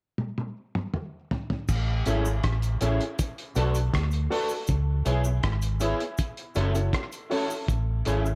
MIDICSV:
0, 0, Header, 1, 6, 480
1, 0, Start_track
1, 0, Key_signature, 3, "major"
1, 0, Tempo, 750000
1, 1080, Time_signature, 4, 2, 24, 8
1, 5344, End_track
2, 0, Start_track
2, 0, Title_t, "Upright piano"
2, 0, Program_c, 0, 0
2, 1317, Note_on_c, 0, 64, 77
2, 1320, Note_on_c, 0, 68, 70
2, 1323, Note_on_c, 0, 69, 68
2, 1326, Note_on_c, 0, 73, 86
2, 1455, Note_off_c, 0, 64, 0
2, 1456, Note_off_c, 0, 68, 0
2, 1458, Note_off_c, 0, 69, 0
2, 1459, Note_off_c, 0, 73, 0
2, 1796, Note_on_c, 0, 64, 76
2, 1798, Note_on_c, 0, 68, 74
2, 1801, Note_on_c, 0, 69, 76
2, 1802, Note_on_c, 0, 73, 87
2, 1934, Note_off_c, 0, 64, 0
2, 1935, Note_off_c, 0, 68, 0
2, 1937, Note_off_c, 0, 69, 0
2, 1937, Note_off_c, 0, 73, 0
2, 2274, Note_on_c, 0, 66, 90
2, 2277, Note_on_c, 0, 69, 76
2, 2281, Note_on_c, 0, 71, 80
2, 2282, Note_on_c, 0, 74, 98
2, 2413, Note_off_c, 0, 66, 0
2, 2414, Note_off_c, 0, 69, 0
2, 2416, Note_off_c, 0, 71, 0
2, 2417, Note_off_c, 0, 74, 0
2, 2753, Note_on_c, 0, 66, 85
2, 2755, Note_on_c, 0, 69, 84
2, 2757, Note_on_c, 0, 71, 79
2, 2759, Note_on_c, 0, 74, 102
2, 2893, Note_off_c, 0, 66, 0
2, 2894, Note_off_c, 0, 69, 0
2, 2894, Note_off_c, 0, 71, 0
2, 2895, Note_off_c, 0, 74, 0
2, 3233, Note_on_c, 0, 64, 76
2, 3237, Note_on_c, 0, 68, 76
2, 3239, Note_on_c, 0, 71, 68
2, 3240, Note_on_c, 0, 73, 93
2, 3373, Note_off_c, 0, 64, 0
2, 3374, Note_off_c, 0, 68, 0
2, 3376, Note_off_c, 0, 71, 0
2, 3376, Note_off_c, 0, 73, 0
2, 3712, Note_on_c, 0, 64, 85
2, 3714, Note_on_c, 0, 68, 70
2, 3716, Note_on_c, 0, 71, 74
2, 3720, Note_on_c, 0, 73, 90
2, 3852, Note_off_c, 0, 64, 0
2, 3853, Note_off_c, 0, 68, 0
2, 3854, Note_off_c, 0, 71, 0
2, 3856, Note_off_c, 0, 73, 0
2, 4193, Note_on_c, 0, 64, 89
2, 4195, Note_on_c, 0, 66, 77
2, 4197, Note_on_c, 0, 69, 84
2, 4200, Note_on_c, 0, 73, 95
2, 4306, Note_off_c, 0, 64, 0
2, 4309, Note_off_c, 0, 66, 0
2, 4311, Note_off_c, 0, 69, 0
2, 4314, Note_off_c, 0, 73, 0
2, 4316, Note_on_c, 0, 64, 70
2, 4318, Note_on_c, 0, 66, 64
2, 4321, Note_on_c, 0, 69, 64
2, 4324, Note_on_c, 0, 73, 80
2, 4451, Note_off_c, 0, 64, 0
2, 4452, Note_off_c, 0, 66, 0
2, 4453, Note_off_c, 0, 69, 0
2, 4455, Note_off_c, 0, 73, 0
2, 4670, Note_on_c, 0, 64, 86
2, 4674, Note_on_c, 0, 66, 85
2, 4676, Note_on_c, 0, 69, 74
2, 4678, Note_on_c, 0, 73, 106
2, 4810, Note_off_c, 0, 64, 0
2, 4812, Note_off_c, 0, 66, 0
2, 4813, Note_off_c, 0, 69, 0
2, 4814, Note_off_c, 0, 73, 0
2, 5154, Note_on_c, 0, 64, 79
2, 5159, Note_on_c, 0, 68, 74
2, 5159, Note_on_c, 0, 69, 69
2, 5163, Note_on_c, 0, 73, 94
2, 5292, Note_off_c, 0, 64, 0
2, 5295, Note_off_c, 0, 68, 0
2, 5295, Note_off_c, 0, 69, 0
2, 5297, Note_off_c, 0, 73, 0
2, 5344, End_track
3, 0, Start_track
3, 0, Title_t, "Clean electric guitar"
3, 0, Program_c, 1, 27
3, 1318, Note_on_c, 1, 61, 79
3, 1321, Note_on_c, 1, 64, 78
3, 1326, Note_on_c, 1, 68, 80
3, 1441, Note_off_c, 1, 61, 0
3, 1443, Note_off_c, 1, 64, 0
3, 1445, Note_off_c, 1, 68, 0
3, 1801, Note_on_c, 1, 61, 75
3, 1805, Note_on_c, 1, 64, 90
3, 1810, Note_on_c, 1, 68, 83
3, 1923, Note_off_c, 1, 61, 0
3, 1925, Note_off_c, 1, 64, 0
3, 1927, Note_off_c, 1, 68, 0
3, 2278, Note_on_c, 1, 62, 86
3, 2286, Note_on_c, 1, 66, 81
3, 2289, Note_on_c, 1, 69, 98
3, 2401, Note_off_c, 1, 62, 0
3, 2405, Note_off_c, 1, 66, 0
3, 2407, Note_off_c, 1, 69, 0
3, 2759, Note_on_c, 1, 62, 97
3, 2762, Note_on_c, 1, 66, 90
3, 2766, Note_on_c, 1, 69, 96
3, 2882, Note_off_c, 1, 62, 0
3, 2883, Note_off_c, 1, 66, 0
3, 2885, Note_off_c, 1, 69, 0
3, 3234, Note_on_c, 1, 59, 74
3, 3243, Note_on_c, 1, 64, 80
3, 3243, Note_on_c, 1, 68, 82
3, 3359, Note_off_c, 1, 59, 0
3, 3363, Note_off_c, 1, 64, 0
3, 3363, Note_off_c, 1, 68, 0
3, 3716, Note_on_c, 1, 59, 87
3, 3720, Note_on_c, 1, 64, 91
3, 3726, Note_on_c, 1, 68, 90
3, 3840, Note_off_c, 1, 59, 0
3, 3842, Note_off_c, 1, 64, 0
3, 3845, Note_off_c, 1, 68, 0
3, 4200, Note_on_c, 1, 61, 87
3, 4204, Note_on_c, 1, 64, 89
3, 4210, Note_on_c, 1, 69, 89
3, 4312, Note_off_c, 1, 69, 0
3, 4320, Note_off_c, 1, 64, 0
3, 4322, Note_off_c, 1, 61, 0
3, 4682, Note_on_c, 1, 61, 90
3, 4687, Note_on_c, 1, 64, 97
3, 4690, Note_on_c, 1, 69, 100
3, 4803, Note_off_c, 1, 61, 0
3, 4805, Note_off_c, 1, 64, 0
3, 4807, Note_off_c, 1, 69, 0
3, 5164, Note_on_c, 1, 61, 85
3, 5167, Note_on_c, 1, 64, 82
3, 5172, Note_on_c, 1, 68, 90
3, 5283, Note_off_c, 1, 61, 0
3, 5285, Note_off_c, 1, 64, 0
3, 5287, Note_off_c, 1, 68, 0
3, 5344, End_track
4, 0, Start_track
4, 0, Title_t, "Fingered electric bass"
4, 0, Program_c, 2, 33
4, 1081, Note_on_c, 2, 33, 97
4, 1288, Note_off_c, 2, 33, 0
4, 1324, Note_on_c, 2, 32, 87
4, 1530, Note_off_c, 2, 32, 0
4, 1561, Note_on_c, 2, 33, 95
4, 1768, Note_off_c, 2, 33, 0
4, 1803, Note_on_c, 2, 33, 92
4, 1907, Note_off_c, 2, 33, 0
4, 2279, Note_on_c, 2, 35, 81
4, 2487, Note_off_c, 2, 35, 0
4, 2523, Note_on_c, 2, 38, 96
4, 2729, Note_off_c, 2, 38, 0
4, 3005, Note_on_c, 2, 37, 96
4, 3210, Note_off_c, 2, 37, 0
4, 3240, Note_on_c, 2, 35, 86
4, 3447, Note_off_c, 2, 35, 0
4, 3480, Note_on_c, 2, 32, 85
4, 3792, Note_off_c, 2, 32, 0
4, 4202, Note_on_c, 2, 30, 86
4, 4408, Note_off_c, 2, 30, 0
4, 4917, Note_on_c, 2, 33, 106
4, 5125, Note_off_c, 2, 33, 0
4, 5162, Note_on_c, 2, 32, 83
4, 5344, Note_off_c, 2, 32, 0
4, 5344, End_track
5, 0, Start_track
5, 0, Title_t, "Muted clean electric guitar strokes"
5, 4320, Note_on_c, 9, 29, 41
5, 4384, Note_off_c, 9, 29, 0
5, 5344, End_track
6, 0, Start_track
6, 0, Title_t, "Drums"
6, 116, Note_on_c, 9, 48, 57
6, 180, Note_off_c, 9, 48, 0
6, 242, Note_on_c, 9, 48, 47
6, 306, Note_off_c, 9, 48, 0
6, 481, Note_on_c, 9, 47, 68
6, 545, Note_off_c, 9, 47, 0
6, 599, Note_on_c, 9, 45, 84
6, 663, Note_off_c, 9, 45, 0
6, 839, Note_on_c, 9, 43, 86
6, 903, Note_off_c, 9, 43, 0
6, 960, Note_on_c, 9, 43, 80
6, 1024, Note_off_c, 9, 43, 0
6, 1077, Note_on_c, 9, 69, 62
6, 1079, Note_on_c, 9, 36, 107
6, 1079, Note_on_c, 9, 49, 89
6, 1141, Note_off_c, 9, 69, 0
6, 1143, Note_off_c, 9, 36, 0
6, 1143, Note_off_c, 9, 49, 0
6, 1315, Note_on_c, 9, 42, 67
6, 1324, Note_on_c, 9, 69, 49
6, 1379, Note_off_c, 9, 42, 0
6, 1388, Note_off_c, 9, 69, 0
6, 1441, Note_on_c, 9, 69, 71
6, 1505, Note_off_c, 9, 69, 0
6, 1559, Note_on_c, 9, 42, 82
6, 1561, Note_on_c, 9, 36, 101
6, 1561, Note_on_c, 9, 37, 105
6, 1623, Note_off_c, 9, 42, 0
6, 1625, Note_off_c, 9, 36, 0
6, 1625, Note_off_c, 9, 37, 0
6, 1679, Note_on_c, 9, 42, 54
6, 1684, Note_on_c, 9, 69, 51
6, 1743, Note_off_c, 9, 42, 0
6, 1748, Note_off_c, 9, 69, 0
6, 1797, Note_on_c, 9, 42, 70
6, 1802, Note_on_c, 9, 69, 65
6, 1861, Note_off_c, 9, 42, 0
6, 1866, Note_off_c, 9, 69, 0
6, 1923, Note_on_c, 9, 42, 52
6, 1987, Note_off_c, 9, 42, 0
6, 2040, Note_on_c, 9, 42, 96
6, 2040, Note_on_c, 9, 69, 69
6, 2043, Note_on_c, 9, 36, 109
6, 2104, Note_off_c, 9, 42, 0
6, 2104, Note_off_c, 9, 69, 0
6, 2107, Note_off_c, 9, 36, 0
6, 2164, Note_on_c, 9, 42, 50
6, 2228, Note_off_c, 9, 42, 0
6, 2274, Note_on_c, 9, 69, 50
6, 2280, Note_on_c, 9, 42, 73
6, 2338, Note_off_c, 9, 69, 0
6, 2344, Note_off_c, 9, 42, 0
6, 2397, Note_on_c, 9, 69, 65
6, 2403, Note_on_c, 9, 42, 45
6, 2461, Note_off_c, 9, 69, 0
6, 2467, Note_off_c, 9, 42, 0
6, 2518, Note_on_c, 9, 36, 101
6, 2520, Note_on_c, 9, 42, 87
6, 2527, Note_on_c, 9, 37, 103
6, 2582, Note_off_c, 9, 36, 0
6, 2584, Note_off_c, 9, 42, 0
6, 2591, Note_off_c, 9, 37, 0
6, 2631, Note_on_c, 9, 69, 47
6, 2643, Note_on_c, 9, 42, 47
6, 2695, Note_off_c, 9, 69, 0
6, 2707, Note_off_c, 9, 42, 0
6, 2764, Note_on_c, 9, 46, 60
6, 2828, Note_off_c, 9, 46, 0
6, 2874, Note_on_c, 9, 69, 63
6, 2938, Note_off_c, 9, 69, 0
6, 2990, Note_on_c, 9, 69, 63
6, 3000, Note_on_c, 9, 42, 89
6, 3001, Note_on_c, 9, 36, 105
6, 3054, Note_off_c, 9, 69, 0
6, 3064, Note_off_c, 9, 42, 0
6, 3065, Note_off_c, 9, 36, 0
6, 3236, Note_on_c, 9, 42, 67
6, 3237, Note_on_c, 9, 69, 44
6, 3300, Note_off_c, 9, 42, 0
6, 3301, Note_off_c, 9, 69, 0
6, 3355, Note_on_c, 9, 69, 71
6, 3419, Note_off_c, 9, 69, 0
6, 3477, Note_on_c, 9, 42, 74
6, 3480, Note_on_c, 9, 36, 106
6, 3480, Note_on_c, 9, 37, 108
6, 3541, Note_off_c, 9, 42, 0
6, 3544, Note_off_c, 9, 36, 0
6, 3544, Note_off_c, 9, 37, 0
6, 3596, Note_on_c, 9, 69, 52
6, 3599, Note_on_c, 9, 42, 54
6, 3660, Note_off_c, 9, 69, 0
6, 3663, Note_off_c, 9, 42, 0
6, 3713, Note_on_c, 9, 69, 67
6, 3717, Note_on_c, 9, 42, 79
6, 3777, Note_off_c, 9, 69, 0
6, 3781, Note_off_c, 9, 42, 0
6, 3843, Note_on_c, 9, 42, 51
6, 3907, Note_off_c, 9, 42, 0
6, 3954, Note_on_c, 9, 69, 68
6, 3959, Note_on_c, 9, 42, 88
6, 3960, Note_on_c, 9, 36, 112
6, 4018, Note_off_c, 9, 69, 0
6, 4023, Note_off_c, 9, 42, 0
6, 4024, Note_off_c, 9, 36, 0
6, 4079, Note_on_c, 9, 42, 51
6, 4143, Note_off_c, 9, 42, 0
6, 4191, Note_on_c, 9, 69, 50
6, 4197, Note_on_c, 9, 42, 72
6, 4255, Note_off_c, 9, 69, 0
6, 4261, Note_off_c, 9, 42, 0
6, 4320, Note_on_c, 9, 69, 67
6, 4322, Note_on_c, 9, 42, 47
6, 4384, Note_off_c, 9, 69, 0
6, 4386, Note_off_c, 9, 42, 0
6, 4436, Note_on_c, 9, 36, 99
6, 4438, Note_on_c, 9, 42, 86
6, 4444, Note_on_c, 9, 37, 103
6, 4500, Note_off_c, 9, 36, 0
6, 4502, Note_off_c, 9, 42, 0
6, 4508, Note_off_c, 9, 37, 0
6, 4557, Note_on_c, 9, 69, 45
6, 4560, Note_on_c, 9, 42, 45
6, 4621, Note_off_c, 9, 69, 0
6, 4624, Note_off_c, 9, 42, 0
6, 4679, Note_on_c, 9, 46, 58
6, 4743, Note_off_c, 9, 46, 0
6, 4802, Note_on_c, 9, 69, 57
6, 4866, Note_off_c, 9, 69, 0
6, 4918, Note_on_c, 9, 36, 109
6, 4918, Note_on_c, 9, 42, 88
6, 4923, Note_on_c, 9, 69, 68
6, 4982, Note_off_c, 9, 36, 0
6, 4982, Note_off_c, 9, 42, 0
6, 4987, Note_off_c, 9, 69, 0
6, 5154, Note_on_c, 9, 42, 70
6, 5166, Note_on_c, 9, 69, 43
6, 5218, Note_off_c, 9, 42, 0
6, 5230, Note_off_c, 9, 69, 0
6, 5284, Note_on_c, 9, 69, 69
6, 5344, Note_off_c, 9, 69, 0
6, 5344, End_track
0, 0, End_of_file